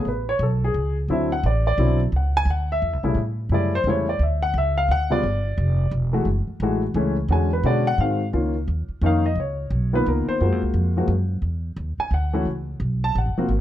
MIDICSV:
0, 0, Header, 1, 4, 480
1, 0, Start_track
1, 0, Key_signature, 3, "major"
1, 0, Tempo, 344432
1, 102, Time_signature, 3, 2, 24, 8
1, 11620, Key_signature, -5, "major"
1, 18963, End_track
2, 0, Start_track
2, 0, Title_t, "Grand piano"
2, 0, Program_c, 0, 0
2, 114, Note_on_c, 0, 71, 62
2, 397, Note_off_c, 0, 71, 0
2, 404, Note_on_c, 0, 73, 93
2, 579, Note_off_c, 0, 73, 0
2, 594, Note_on_c, 0, 69, 72
2, 876, Note_off_c, 0, 69, 0
2, 898, Note_on_c, 0, 68, 84
2, 1336, Note_off_c, 0, 68, 0
2, 1529, Note_on_c, 0, 54, 58
2, 1530, Note_on_c, 0, 60, 57
2, 1532, Note_on_c, 0, 50, 66
2, 1538, Note_on_c, 0, 64, 73
2, 1566, Note_on_c, 0, 76, 64
2, 1803, Note_off_c, 0, 54, 0
2, 1804, Note_off_c, 0, 60, 0
2, 1805, Note_off_c, 0, 50, 0
2, 1808, Note_off_c, 0, 64, 0
2, 1843, Note_off_c, 0, 76, 0
2, 1844, Note_on_c, 0, 78, 95
2, 2019, Note_off_c, 0, 78, 0
2, 2037, Note_on_c, 0, 74, 78
2, 2308, Note_off_c, 0, 74, 0
2, 2329, Note_on_c, 0, 74, 96
2, 2488, Note_on_c, 0, 54, 55
2, 2489, Note_on_c, 0, 50, 57
2, 2492, Note_on_c, 0, 60, 53
2, 2503, Note_on_c, 0, 64, 62
2, 2763, Note_off_c, 0, 54, 0
2, 2764, Note_off_c, 0, 50, 0
2, 2765, Note_off_c, 0, 60, 0
2, 2770, Note_off_c, 0, 64, 0
2, 2771, Note_off_c, 0, 74, 0
2, 3015, Note_on_c, 0, 78, 63
2, 3287, Note_off_c, 0, 78, 0
2, 3301, Note_on_c, 0, 80, 119
2, 3468, Note_off_c, 0, 80, 0
2, 3490, Note_on_c, 0, 78, 82
2, 3765, Note_off_c, 0, 78, 0
2, 3790, Note_on_c, 0, 76, 97
2, 4223, Note_off_c, 0, 76, 0
2, 4230, Note_on_c, 0, 55, 54
2, 4232, Note_on_c, 0, 49, 65
2, 4239, Note_on_c, 0, 57, 58
2, 4241, Note_on_c, 0, 64, 73
2, 4400, Note_off_c, 0, 49, 0
2, 4400, Note_off_c, 0, 55, 0
2, 4404, Note_off_c, 0, 57, 0
2, 4405, Note_off_c, 0, 64, 0
2, 4900, Note_on_c, 0, 49, 56
2, 4903, Note_on_c, 0, 55, 54
2, 4904, Note_on_c, 0, 64, 68
2, 4907, Note_on_c, 0, 57, 46
2, 4936, Note_on_c, 0, 74, 78
2, 5169, Note_off_c, 0, 49, 0
2, 5170, Note_off_c, 0, 55, 0
2, 5171, Note_off_c, 0, 64, 0
2, 5172, Note_off_c, 0, 57, 0
2, 5208, Note_off_c, 0, 74, 0
2, 5230, Note_on_c, 0, 72, 104
2, 5393, Note_off_c, 0, 72, 0
2, 5393, Note_on_c, 0, 57, 55
2, 5394, Note_on_c, 0, 49, 59
2, 5396, Note_on_c, 0, 55, 49
2, 5400, Note_on_c, 0, 64, 65
2, 5431, Note_on_c, 0, 73, 82
2, 5655, Note_off_c, 0, 57, 0
2, 5656, Note_off_c, 0, 49, 0
2, 5657, Note_off_c, 0, 55, 0
2, 5659, Note_off_c, 0, 64, 0
2, 5696, Note_off_c, 0, 73, 0
2, 5702, Note_on_c, 0, 74, 82
2, 5869, Note_off_c, 0, 74, 0
2, 5894, Note_on_c, 0, 76, 61
2, 6167, Note_off_c, 0, 76, 0
2, 6167, Note_on_c, 0, 78, 104
2, 6341, Note_off_c, 0, 78, 0
2, 6381, Note_on_c, 0, 76, 84
2, 6650, Note_off_c, 0, 76, 0
2, 6655, Note_on_c, 0, 77, 99
2, 6825, Note_off_c, 0, 77, 0
2, 6849, Note_on_c, 0, 78, 111
2, 7111, Note_on_c, 0, 49, 61
2, 7119, Note_on_c, 0, 55, 59
2, 7120, Note_on_c, 0, 59, 60
2, 7124, Note_off_c, 0, 78, 0
2, 7124, Note_on_c, 0, 65, 73
2, 7132, Note_on_c, 0, 74, 96
2, 7280, Note_off_c, 0, 49, 0
2, 7284, Note_off_c, 0, 55, 0
2, 7284, Note_off_c, 0, 59, 0
2, 7286, Note_off_c, 0, 65, 0
2, 8212, Note_off_c, 0, 74, 0
2, 8541, Note_on_c, 0, 56, 60
2, 8543, Note_on_c, 0, 52, 59
2, 8544, Note_on_c, 0, 57, 68
2, 8560, Note_on_c, 0, 66, 77
2, 8714, Note_off_c, 0, 56, 0
2, 8715, Note_off_c, 0, 52, 0
2, 8716, Note_off_c, 0, 57, 0
2, 8724, Note_off_c, 0, 66, 0
2, 9229, Note_on_c, 0, 52, 66
2, 9231, Note_on_c, 0, 56, 66
2, 9233, Note_on_c, 0, 57, 61
2, 9244, Note_on_c, 0, 66, 76
2, 9492, Note_off_c, 0, 52, 0
2, 9493, Note_off_c, 0, 56, 0
2, 9494, Note_off_c, 0, 57, 0
2, 9500, Note_off_c, 0, 66, 0
2, 9691, Note_on_c, 0, 52, 64
2, 9692, Note_on_c, 0, 56, 58
2, 9701, Note_on_c, 0, 57, 60
2, 9711, Note_on_c, 0, 61, 69
2, 9963, Note_off_c, 0, 52, 0
2, 9964, Note_off_c, 0, 56, 0
2, 9968, Note_off_c, 0, 57, 0
2, 9973, Note_off_c, 0, 61, 0
2, 10178, Note_on_c, 0, 50, 58
2, 10179, Note_on_c, 0, 56, 61
2, 10181, Note_on_c, 0, 66, 69
2, 10182, Note_on_c, 0, 61, 58
2, 10206, Note_on_c, 0, 80, 72
2, 10447, Note_off_c, 0, 50, 0
2, 10447, Note_off_c, 0, 56, 0
2, 10448, Note_off_c, 0, 66, 0
2, 10449, Note_off_c, 0, 61, 0
2, 10481, Note_off_c, 0, 80, 0
2, 10496, Note_on_c, 0, 71, 72
2, 10652, Note_on_c, 0, 50, 65
2, 10656, Note_on_c, 0, 56, 67
2, 10661, Note_on_c, 0, 61, 62
2, 10665, Note_off_c, 0, 71, 0
2, 10667, Note_on_c, 0, 66, 76
2, 10681, Note_on_c, 0, 74, 86
2, 10923, Note_off_c, 0, 50, 0
2, 10925, Note_off_c, 0, 56, 0
2, 10928, Note_off_c, 0, 61, 0
2, 10931, Note_off_c, 0, 66, 0
2, 10959, Note_off_c, 0, 74, 0
2, 10971, Note_on_c, 0, 78, 105
2, 11142, Note_off_c, 0, 78, 0
2, 11145, Note_on_c, 0, 51, 54
2, 11149, Note_on_c, 0, 56, 52
2, 11149, Note_on_c, 0, 60, 54
2, 11155, Note_on_c, 0, 66, 63
2, 11155, Note_on_c, 0, 77, 76
2, 11410, Note_off_c, 0, 51, 0
2, 11412, Note_off_c, 0, 56, 0
2, 11412, Note_off_c, 0, 60, 0
2, 11415, Note_off_c, 0, 66, 0
2, 11510, Note_off_c, 0, 77, 0
2, 11610, Note_on_c, 0, 58, 50
2, 11613, Note_on_c, 0, 51, 57
2, 11616, Note_on_c, 0, 61, 51
2, 11619, Note_on_c, 0, 65, 65
2, 11882, Note_off_c, 0, 58, 0
2, 11884, Note_off_c, 0, 51, 0
2, 11886, Note_off_c, 0, 61, 0
2, 11887, Note_off_c, 0, 65, 0
2, 12578, Note_on_c, 0, 51, 73
2, 12587, Note_on_c, 0, 58, 60
2, 12592, Note_on_c, 0, 61, 55
2, 12597, Note_on_c, 0, 63, 70
2, 12627, Note_on_c, 0, 77, 85
2, 12847, Note_off_c, 0, 51, 0
2, 12851, Note_off_c, 0, 58, 0
2, 12854, Note_off_c, 0, 61, 0
2, 12856, Note_off_c, 0, 63, 0
2, 12893, Note_off_c, 0, 77, 0
2, 12902, Note_on_c, 0, 75, 83
2, 13068, Note_off_c, 0, 75, 0
2, 13096, Note_on_c, 0, 73, 61
2, 13803, Note_off_c, 0, 73, 0
2, 13836, Note_on_c, 0, 51, 59
2, 13841, Note_on_c, 0, 58, 55
2, 13844, Note_on_c, 0, 59, 59
2, 13849, Note_on_c, 0, 65, 68
2, 13872, Note_on_c, 0, 71, 90
2, 14033, Note_off_c, 0, 71, 0
2, 14049, Note_on_c, 0, 70, 72
2, 14324, Note_off_c, 0, 70, 0
2, 14334, Note_on_c, 0, 72, 89
2, 14464, Note_off_c, 0, 51, 0
2, 14467, Note_off_c, 0, 58, 0
2, 14468, Note_off_c, 0, 59, 0
2, 14470, Note_off_c, 0, 65, 0
2, 14503, Note_on_c, 0, 65, 60
2, 14515, Note_on_c, 0, 56, 55
2, 14515, Note_on_c, 0, 58, 54
2, 14515, Note_on_c, 0, 66, 66
2, 14774, Note_off_c, 0, 72, 0
2, 15221, Note_off_c, 0, 65, 0
2, 15226, Note_off_c, 0, 56, 0
2, 15226, Note_off_c, 0, 58, 0
2, 15227, Note_off_c, 0, 66, 0
2, 15286, Note_on_c, 0, 56, 56
2, 15287, Note_on_c, 0, 53, 58
2, 15299, Note_on_c, 0, 66, 72
2, 15300, Note_on_c, 0, 58, 48
2, 15448, Note_off_c, 0, 53, 0
2, 15448, Note_off_c, 0, 56, 0
2, 15454, Note_off_c, 0, 66, 0
2, 15455, Note_off_c, 0, 58, 0
2, 16722, Note_on_c, 0, 80, 87
2, 16899, Note_off_c, 0, 80, 0
2, 16917, Note_on_c, 0, 78, 79
2, 17188, Note_on_c, 0, 52, 65
2, 17191, Note_on_c, 0, 57, 60
2, 17201, Note_on_c, 0, 61, 54
2, 17206, Note_on_c, 0, 66, 74
2, 17358, Note_off_c, 0, 78, 0
2, 17359, Note_off_c, 0, 52, 0
2, 17361, Note_off_c, 0, 57, 0
2, 17366, Note_off_c, 0, 61, 0
2, 17368, Note_off_c, 0, 66, 0
2, 18173, Note_on_c, 0, 81, 99
2, 18346, Note_off_c, 0, 81, 0
2, 18371, Note_on_c, 0, 78, 70
2, 18640, Note_on_c, 0, 53, 65
2, 18644, Note_on_c, 0, 58, 53
2, 18647, Note_on_c, 0, 60, 57
2, 18656, Note_on_c, 0, 66, 71
2, 18806, Note_off_c, 0, 53, 0
2, 18806, Note_off_c, 0, 78, 0
2, 18808, Note_off_c, 0, 58, 0
2, 18810, Note_off_c, 0, 60, 0
2, 18814, Note_off_c, 0, 66, 0
2, 18963, End_track
3, 0, Start_track
3, 0, Title_t, "Upright bass"
3, 0, Program_c, 1, 32
3, 72, Note_on_c, 1, 33, 70
3, 538, Note_off_c, 1, 33, 0
3, 546, Note_on_c, 1, 35, 92
3, 1030, Note_off_c, 1, 35, 0
3, 1036, Note_on_c, 1, 37, 80
3, 1502, Note_off_c, 1, 37, 0
3, 1510, Note_on_c, 1, 38, 72
3, 1992, Note_off_c, 1, 38, 0
3, 1999, Note_on_c, 1, 33, 95
3, 2468, Note_off_c, 1, 33, 0
3, 2477, Note_on_c, 1, 35, 94
3, 2948, Note_off_c, 1, 35, 0
3, 2956, Note_on_c, 1, 37, 79
3, 3411, Note_off_c, 1, 37, 0
3, 3419, Note_on_c, 1, 38, 86
3, 3906, Note_off_c, 1, 38, 0
3, 3930, Note_on_c, 1, 40, 87
3, 4080, Note_off_c, 1, 40, 0
3, 4080, Note_on_c, 1, 37, 60
3, 4216, Note_off_c, 1, 37, 0
3, 4224, Note_on_c, 1, 35, 61
3, 4376, Note_off_c, 1, 35, 0
3, 4384, Note_on_c, 1, 45, 78
3, 4860, Note_off_c, 1, 45, 0
3, 4869, Note_on_c, 1, 42, 80
3, 5342, Note_off_c, 1, 42, 0
3, 5351, Note_on_c, 1, 40, 87
3, 5832, Note_off_c, 1, 40, 0
3, 5843, Note_on_c, 1, 38, 85
3, 6314, Note_off_c, 1, 38, 0
3, 6322, Note_on_c, 1, 37, 100
3, 6798, Note_off_c, 1, 37, 0
3, 6805, Note_on_c, 1, 38, 78
3, 7279, Note_off_c, 1, 38, 0
3, 7293, Note_on_c, 1, 31, 82
3, 7763, Note_off_c, 1, 31, 0
3, 7770, Note_on_c, 1, 29, 94
3, 8233, Note_off_c, 1, 29, 0
3, 8242, Note_on_c, 1, 28, 91
3, 8704, Note_off_c, 1, 28, 0
3, 8712, Note_on_c, 1, 30, 76
3, 9002, Note_off_c, 1, 30, 0
3, 9196, Note_on_c, 1, 33, 89
3, 9668, Note_off_c, 1, 33, 0
3, 9677, Note_on_c, 1, 37, 91
3, 10143, Note_off_c, 1, 37, 0
3, 10152, Note_on_c, 1, 40, 85
3, 10631, Note_off_c, 1, 40, 0
3, 10639, Note_on_c, 1, 47, 90
3, 11115, Note_off_c, 1, 47, 0
3, 11121, Note_on_c, 1, 44, 86
3, 11596, Note_off_c, 1, 44, 0
3, 11612, Note_on_c, 1, 37, 75
3, 12082, Note_off_c, 1, 37, 0
3, 12091, Note_on_c, 1, 39, 82
3, 12372, Note_off_c, 1, 39, 0
3, 12563, Note_on_c, 1, 41, 91
3, 13028, Note_off_c, 1, 41, 0
3, 13036, Note_on_c, 1, 37, 80
3, 13514, Note_off_c, 1, 37, 0
3, 13524, Note_on_c, 1, 35, 92
3, 13998, Note_off_c, 1, 35, 0
3, 14025, Note_on_c, 1, 37, 86
3, 14300, Note_off_c, 1, 37, 0
3, 14503, Note_on_c, 1, 42, 76
3, 14663, Note_off_c, 1, 42, 0
3, 14663, Note_on_c, 1, 41, 58
3, 14798, Note_off_c, 1, 41, 0
3, 14807, Note_on_c, 1, 37, 57
3, 14955, Note_off_c, 1, 37, 0
3, 14963, Note_on_c, 1, 41, 87
3, 15429, Note_off_c, 1, 41, 0
3, 15437, Note_on_c, 1, 42, 95
3, 15904, Note_off_c, 1, 42, 0
3, 15913, Note_on_c, 1, 40, 72
3, 16387, Note_off_c, 1, 40, 0
3, 16395, Note_on_c, 1, 39, 87
3, 16685, Note_off_c, 1, 39, 0
3, 16873, Note_on_c, 1, 38, 84
3, 17347, Note_off_c, 1, 38, 0
3, 17355, Note_on_c, 1, 37, 69
3, 17826, Note_off_c, 1, 37, 0
3, 17835, Note_on_c, 1, 35, 91
3, 18316, Note_off_c, 1, 35, 0
3, 18329, Note_on_c, 1, 33, 92
3, 18478, Note_on_c, 1, 30, 61
3, 18499, Note_off_c, 1, 33, 0
3, 18632, Note_off_c, 1, 30, 0
3, 18640, Note_on_c, 1, 28, 56
3, 18786, Note_off_c, 1, 28, 0
3, 18794, Note_on_c, 1, 32, 87
3, 18963, Note_off_c, 1, 32, 0
3, 18963, End_track
4, 0, Start_track
4, 0, Title_t, "Muted upright bass strokes"
4, 9023, Note_on_c, 9, 29, 38
4, 9163, Note_off_c, 9, 29, 0
4, 12381, Note_on_c, 9, 29, 43
4, 12521, Note_off_c, 9, 29, 0
4, 14326, Note_on_c, 9, 29, 39
4, 14466, Note_off_c, 9, 29, 0
4, 16696, Note_on_c, 9, 29, 41
4, 16835, Note_off_c, 9, 29, 0
4, 18963, End_track
0, 0, End_of_file